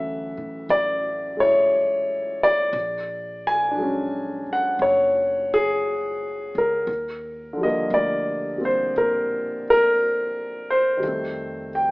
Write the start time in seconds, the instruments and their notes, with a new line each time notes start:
Already playing: upright bass D2, grand piano C#3 E3 F#3 A3 E5 F#5
0.37 upright bass A2
0.69 upright bass A1, grand piano D5
1.37 grand piano G#3 E4 C#5
2.43 grand piano D5
2.73 upright bass A#1
3.47 grand piano G#5
3.71 grand piano D4
3.75 grand piano F#3 G#3
3.82 grand piano C#4
4.46 muted upright bass stroke
4.53 grand piano F#5
4.79 upright bass F#1, grand piano C#5
5.54 grand piano G#4
6.55 upright bass C#2, grand piano A#4
6.87 upright bass D#2
7.53 grand piano D3 F3
7.61 grand piano G3 A#3 D#5
7.90 upright bass D2, grand piano D5
8.58 grand piano G3 A#3 C4
8.65 grand piano C5
8.96 upright bass A#2, grand piano A#4
9.70 grand piano A#4
10.70 grand piano C5
10.97 grand piano D#3 G3
11.03 upright bass F2, grand piano A3
11.08 grand piano C4
11.75 grand piano G5